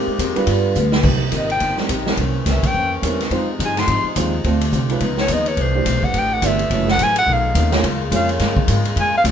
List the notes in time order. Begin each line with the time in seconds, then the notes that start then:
Already playing: C3 G#3 A#3 C4 D#4 G4 A#4 C5
0.07 muted upright bass stroke
0.18 F2 G#3 C4 G4 A#4, kick, hi-hat pedal, ride
0.35 G3 B3 D4 F4 B4, muted upright bass stroke, ride
0.47 G2 D3 G3 B3 D4 F4 B4, kick, ride
0.75 D2 G3 D4 F4 B4, hi-hat pedal
0.92 snare
1.03 C2 C3 G3 A#3 C4 D#4 G4, kick, crash
1.32 G#1 C3 A#3 D#4 G4, kick, hi-hat pedal, ride
1.37 D#5
1.50 G5, ride
1.60 G1 C3 A#3 D#4 G4, kick, ride
1.77 G3 A#3 C4 D#4 A#4, muted upright bass stroke, snare
1.89 A#1 C3 A#3 D#4 G4, kick, hi-hat pedal, ride
2.06 G3 C4 C#4 E4 A#4, snare
2.17 C2 C3 E3 A#3 C#4, kick, ride
2.46 C#2 C3 E3 A#3 C#4, kick, snare, hi-hat pedal, ride
2.51 C2 E5
2.63 A#1 G5, kick, ride
2.74 F2 C3 E3 A#3 C#4, kick
3.02 E2 C3 E3 G3 A#3 C4 C#4 E4 A#4, kick, hi-hat pedal, ride
3.20 snare, ride
3.31 F2 C3 F3 G#3 C4 D#4 F4 C5, kick, ride
3.35 G#4
3.59 G2 F3 C4 D#4 G#4, kick, hi-hat pedal, ride
3.65 G#5
3.77 C6, snare, ride
3.87 G#2 F3 C4 D#4 G#4, kick, ride
4.04 muted upright bass stroke
4.15 D#2 F3 G#3 C4 D#4 F4 G#4 C5, kick, hi-hat pedal, ride
4.44 D2 D3 F3 A3 C4 D4 F4 A4 C5, kick, ride
4.61 ride
4.72 C2 D3 C4 F4 A4, kick, hi-hat pedal
4.90 G#3 C#4 D#4 F4 B4, ride
5.00 C#2 C#3 F3 B3 D#4, kick, ride
5.17 C#5, snare
5.28 D#2 C#3 F3 B3 D#4, kick, hi-hat pedal, ride
5.33 D#5
5.46 C#5, ride
5.56 C2 C3 E3 A3 D4, kick, ride
5.62 C5
5.74 A3 D4 E4 G4 C5
5.85 B1 C3 E3 A3 D4, kick, hi-hat pedal, ride
6.03 F#5, muted upright bass stroke, kick
6.14 A1 C3 E3 A3 D4, kick, ride
6.19 G5
6.34 F#5
6.42 G1 C3 E3 A3 D4 E4 G4 D5, kick, hi-hat pedal, ride
6.46 E5
6.59 ride
6.70 F#1 F#2 C#3 E3 F#3 A3 C#4 E4 F#4 C#5, kick, ride
6.88 F#5, snare
6.98 A1 F#2 E3 A3 C#4, kick, hi-hat pedal, ride
7.03 G#5
7.16 F#5, ride
7.27 B1 B2 D#3 A3 B3 C#4 D#4, kick
7.33 F5
7.55 D#2 B2 D#3 A3 C#4, kick, hi-hat pedal, ride
7.72 A#3 C#4 F4 G#4 C#5, snare, ride
7.82 C#2 C#3 G#3 A#3 F4, kick, ride
8.11 F2 C#3 G#3 A#3 C#4 F4 G#4 C#5, kick, hi-hat pedal, ride
8.16 F5
8.29 C#5, ride
8.39 G2 C#3 G#3 A#3 F4, kick, snare, ride
8.57 kick
8.68 G#2 C#3 G#3 A#3 F4, kick, hi-hat pedal, ride
8.85 ride
8.96 F2 A#2 G#3 C#4 F4, kick, ride
9.00 G#5
9.18 F5
9.24 C#2 A#2 G#3 C#4 F4, kick, hi-hat pedal, ride